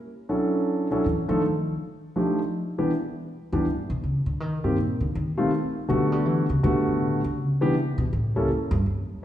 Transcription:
0.29 0.86 F#3 soft
0.29 0.87 C#4 soft
0.29 0.86 D4 soft
0.29 0.87 E4 soft
0.29 0.87 A4 medium
0.91 1.03 F#3 medium
0.91 1.03 C#4 medium
0.91 1.04 D4 medium
0.91 1.04 E4 soft
0.91 1.04 A4 medium
1.06 1.28 E3 medium
1.28 1.76 D#3 medium
1.28 1.41 F3 medium
1.28 1.41 A3 medium
1.28 1.41 D4 soft
1.28 1.41 D#4 medium
1.28 1.41 A4 medium
2.16 2.38 F3 soft
2.16 2.38 A3 soft
2.16 2.38 D4 soft
2.16 2.38 D#4 soft
2.16 2.38 G4 medium
2.78 2.90 E3 medium
2.78 2.90 G3 medium
2.78 2.90 B3 medium
2.78 2.90 D4 medium
2.78 2.90 G4 medium
3.52 3.65 F#2 medium
3.52 3.64 E3 medium
3.52 3.65 G3 medium
3.52 3.65 B3 medium
3.52 3.65 D4 medium
3.52 3.64 G4 medium
3.66 3.89 G2 medium
3.90 4.02 B2 medium
4.04 4.26 C#3 medium
4.26 4.40 D3 medium
4.40 4.63 D#3 loud
4.64 4.76 G2 medium
4.64 4.76 D#3 medium
4.64 4.76 G3 soft
4.64 4.76 A#3 soft
4.64 4.76 C4 medium
4.64 4.76 G4 medium
4.78 5.00 A#2 medium
5.01 5.14 D3 medium
5.15 5.29 D#3 medium
5.38 5.50 D#3 medium
5.38 5.50 G3 medium
5.38 5.50 A3 medium
5.38 5.50 C4 medium
5.38 5.50 F4 medium
5.88 6.45 D3 medium
5.88 6.12 F#3 medium
5.88 6.45 G3 medium
5.88 6.45 A3 medium
5.88 6.45 B3 medium
5.88 6.45 F#4 medium
6.12 6.26 G3 loud
6.26 6.49 E3 medium
6.50 6.62 C#3 medium
6.63 7.20 D3 medium
6.63 6.87 D3 loud
6.63 7.20 G3 medium
6.63 7.19 A3 medium
6.63 7.20 B3 medium
6.63 7.20 F#4 medium
6.87 7.02 F#2 medium
7.02 7.24 A2 medium
7.24 7.39 D3 medium
7.39 7.97 C#3 medium
7.61 7.73 E3 medium
7.61 7.73 G3 medium
7.61 7.73 B3 medium
7.61 7.73 D4 medium
7.61 7.73 G4 medium
7.98 8.11 B2 medium
8.13 8.36 A2 medium
8.36 8.48 C#2 soft
8.36 8.48 G3 medium
8.36 8.48 A#3 medium
8.36 8.48 C#4 medium
8.36 8.48 E4 medium
8.36 8.48 A4 medium
8.49 8.70 E2 medium
8.71 8.85 G2 loud
8.86 9.24 F#2 medium

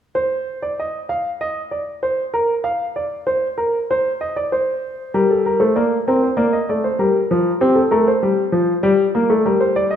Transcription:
0.15 0.61 C5 medium
0.62 0.78 D5 medium
0.80 0.98 D#5 medium
1.09 1.29 F5 medium
1.41 1.60 D#5 medium
1.71 1.91 D5 medium
2.03 2.22 C5 medium
2.34 2.53 A#4 medium
2.64 2.84 F5 medium
2.96 3.16 D5 medium
3.27 3.46 C5 medium
3.58 3.77 A#4 medium
3.91 4.10 C5 medium
4.21 4.36 D#5 medium
4.36 4.52 D5 medium
4.52 5.12 C5 medium
5.14 5.59 G3 medium
5.14 5.29 A#4 medium
5.31 5.45 A4 medium
5.46 5.61 A#4 medium
5.60 5.75 A3 medium
5.60 5.75 C5 medium
5.76 5.95 A#3 medium
5.76 5.95 D5 medium
6.08 6.27 C4 medium
6.08 6.22 A#4 medium
6.23 6.38 C5 medium
6.37 6.56 A#3 medium
6.37 6.52 D5 medium
6.53 6.68 D#5 medium
6.69 6.88 A3 medium
6.69 6.84 D5 medium
6.84 6.99 C5 medium
6.99 7.18 G3 medium
6.99 7.59 A#4 medium
7.31 7.50 F3 medium
7.61 7.80 C4 medium
7.61 7.76 G4 medium
7.75 7.91 A4 medium
7.91 8.11 A3 medium
7.91 8.06 A#4 medium
8.08 8.82 C5 medium
8.23 8.42 G3 medium
8.52 8.72 F3 medium
8.83 9.03 G3 loud
8.83 9.44 D5 medium
9.15 9.30 A#3 medium
9.30 9.45 A3 medium
9.45 9.96 G3 medium
9.45 9.61 A#4 medium
9.60 9.76 C5 medium
9.76 9.92 D5 medium
9.91 9.96 D#5 medium

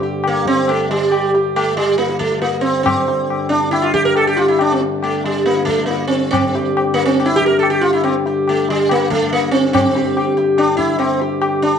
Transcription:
0.00 6.30 G2 medium
0.00 6.31 D3 medium
0.00 0.23 G4 soft
0.00 tabla te medium
0.24 0.47 A#3 medium
0.24 tabla na medium
0.45 0.69 C4 loud
0.45 tabla ke medium
0.68 0.90 A3 medium
0.68 tabla na medium
0.91 1.31 G3 medium
0.91 tabla te medium
1.11 1.32 G4 soft
1.11 tabla na medium
1.34 1.55 G4 soft
1.34 tabla te medium
1.56 1.76 A3 medium
1.56 tabla na medium
1.77 1.97 G3 medium
1.77 tabla te medium
1.98 2.19 A#3 medium
1.98 tabla te medium
2.09 tabla te medium
2.19 2.41 A3 medium
2.19 tabla ke medium
2.31 tabla te medium
2.42 2.65 A#3 medium
2.42 tabla te medium
2.61 2.82 C4 medium
2.61 tabla te medium
2.83 3.49 C4 medium
2.83 tabla na loud
2.83 tabla ge medium
3.08 tabla te medium
3.30 tabla na medium
3.49 3.71 D4 medium
3.49 tabla te medium
3.71 3.84 E4 medium
3.71 tabla na medium
3.82 3.93 F4 medium
3.94 4.05 G4 loud
3.94 tabla ke medium
4.05 4.16 A#4 loud
4.15 4.27 A4 medium
4.15 tabla na medium
4.27 4.39 G4 medium
4.37 4.48 F4 medium
4.37 tabla te medium
4.48 4.60 E4 medium
4.59 4.72 D4 medium
4.59 tabla na medium
4.72 4.82 C4 medium
4.81 tabla te medium
5.03 5.25 A3 medium
5.03 tabla na medium
5.24 5.45 G3 medium
5.24 tabla te medium
5.46 5.65 A#3 medium
5.46 tabla te medium
5.57 tabla te medium
5.65 5.85 A3 medium
5.65 tabla ke medium
5.79 tabla te medium
5.86 6.07 A#3 medium
5.91 tabla te medium
6.07 6.30 C4 medium
6.12 tabla te medium
6.31 11.79 G2 medium
6.31 11.79 D3 medium
6.31 6.93 C4 medium
6.31 tabla na loud
6.31 tabla ge medium
6.55 6.75 G4 soft
6.55 tabla te medium
6.77 tabla na medium
6.94 7.05 A#3 medium
6.99 tabla te medium
7.06 7.29 C4 medium
7.20 tabla na medium
7.26 7.39 E4 medium
7.36 7.46 G4 loud
7.41 tabla ke medium
7.46 7.59 A#4 medium
7.59 7.70 A4 medium
7.63 tabla na medium
7.70 7.82 G4 medium
7.81 7.92 F4 medium
7.81 tabla te medium
7.93 8.03 E4 medium
8.03 8.14 C4 medium
8.03 tabla na medium
8.26 8.46 G4 soft
8.26 tabla te medium
8.48 8.70 A3 medium
8.48 tabla na medium
8.69 8.91 G3 medium
8.69 tabla te medium
8.89 9.10 A#3 loud
8.89 tabla na medium
9.10 9.32 A3 medium
9.10 tabla ke medium
9.33 9.51 A#3 medium
9.33 tabla te medium
9.51 9.72 C4 loud
9.51 tabla te medium
9.73 10.33 C4 medium
9.73 tabla na medium
9.73 tabla ge medium
9.95 10.16 G4 soft
9.95 tabla te medium
10.17 10.36 G4 soft
10.17 tabla na medium
10.37 10.57 G4 soft
10.37 tabla te medium
10.58 10.76 D4 medium
10.58 tabla na medium
10.77 10.98 E4 loud
10.77 tabla ke medium
10.99 11.19 C4 medium
10.99 tabla na medium
11.21 11.40 G4 soft
11.21 tabla te medium
11.41 11.62 G4 soft
11.41 tabla na medium
11.62 11.79 D4 medium
11.62 tabla te medium

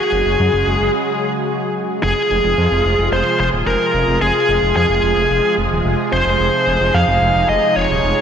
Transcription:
0.00 2.01 C#3 medium
0.00 1.99 F#3 medium
0.00 2.01 G#3 medium
0.00 2.00 F#4 medium
0.00 0.90 G#4 medium
0.00 2.01 G#4 loud
0.12 0.22 F#1 medium
0.26 0.36 F#1 medium
0.40 0.50 F#2 loud
0.53 0.63 F#1 medium
0.67 0.77 F#1 loud
0.81 0.90 F#1 medium
2.03 2.13 F1 loud
2.03 8.21 C3 medium
2.03 8.21 F3 medium
2.03 8.21 G#3 medium
2.03 6.36 F4 medium
2.03 8.21 G#4 loud
2.03 3.09 G#4 loud
2.31 2.41 F1 medium
2.44 2.54 F1 medium
2.58 2.68 F2 loud
2.72 2.81 F1 medium
2.85 2.95 F1 loud
2.99 3.09 F1 medium
3.13 3.22 F1 loud
3.13 3.39 C5 loud
3.40 3.50 F1 medium
3.40 3.47 C5 loud
3.54 3.63 D#1 medium
3.67 3.77 F1 loud
3.67 4.18 A#4 loud
3.94 4.04 F1 loud
4.08 4.18 F1 medium
4.22 4.31 F1 loud
4.22 4.75 G#4 loud
4.49 4.59 F1 medium
4.62 4.72 F1 medium
4.76 4.86 F2 loud
4.76 5.54 G#4 medium
4.90 5.00 F1 medium
5.03 5.13 F1 loud
5.17 5.27 F1 medium
5.31 5.40 F1 loud
5.58 5.68 F1 loud
5.72 5.81 D#1 medium
5.85 5.95 F1 loud
6.13 6.22 F1 loud
6.13 6.97 C5 loud
6.26 6.36 F1 medium
6.40 6.50 F1 loud
6.40 8.21 D#4 medium
6.67 6.77 F1 medium
6.81 6.91 F1 medium
6.95 7.04 F2 loud
6.95 7.49 F5 loud
7.08 7.18 F1 medium
7.22 7.31 F1 loud
7.35 7.45 F1 medium
7.49 7.59 F1 loud
7.49 7.74 D#5 loud
7.76 7.86 F1 medium
7.76 8.21 C#5 loud
7.90 8.00 D#1 medium
8.04 8.13 F1 loud

